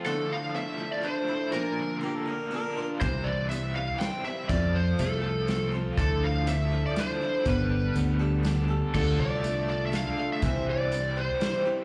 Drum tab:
CC |------|------|------|------|
HH |------|------|x-x-x-|x-x-x-|
SD |------|------|----o-|----o-|
BD |------|------|o-----|o-----|

CC |------|------|x-----|------|
HH |x-x-x-|x-x-x-|--x-x-|x-x-x-|
SD |----o-|----o-|----o-|----o-|
BD |o-----|o-----|o-----|o-----|